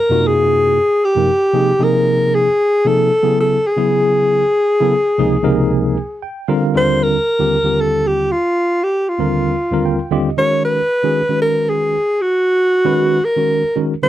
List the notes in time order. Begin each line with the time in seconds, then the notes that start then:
Already playing: A#4
0.10 F#2 C3 A#3 D#4 F4 F#4
0.27 G#4
1.05 G4
1.15 F#2 C3 F3 A#3 D#4 A#4
1.53 C3 F3 A#3 D#4 G#4
1.79 C3 F3 A#3 D#4 G#4
1.84 A#4
2.35 G#4
2.85 C3 F3 A#3 D#4 G#4 A4
3.23 C#3 F#3 B3 E4 G#4
3.40 A4
3.67 G#4
3.76 C#3 F#3 B3 E4 G#4
4.80 C#3 F#3 B3 E4 A4
5.18 C#2 C3 F3 A#3 D#4 G#4
5.42 C#2 C3 F3 A#3 D#4 A#4
6.22 G5
6.48 D3 G3 C4 F4 A#4 F5
6.74 D#2 D3 G3 C4 F4 A#4 C5
7.03 A#4
7.39 D#2 D3 G3 C4 F4 G4
7.64 D#2 D3 G3 C4 F4 G4
7.81 A4
8.07 G4
8.32 F4
8.84 G4
9.09 F4
9.18 D#2 D3 G3 C4 F4 A#4
9.72 D#2 D3 G3 C4 F4 A#4
9.85 G5
10.11 D#2 D3 G3 C4 F4 G4 D#5
10.37 D#3 G#3 C#4 F#4 A#4 C#5
10.65 B4
11.03 D#3 G#3 C#4 F#4 G#4
11.29 D#3 G#3 C#4 F#4 B4
11.42 A#4
11.70 G#4
12.22 F#4
12.85 D#3 G#3 C#4 F#4 B4
13.25 A#4
13.37 D#3 G#3 C#4 F#4 A#4
13.76 D#3 G#3 C#4 F#4 A#4
14.03 D3 G3 C4 F4 A#4 C5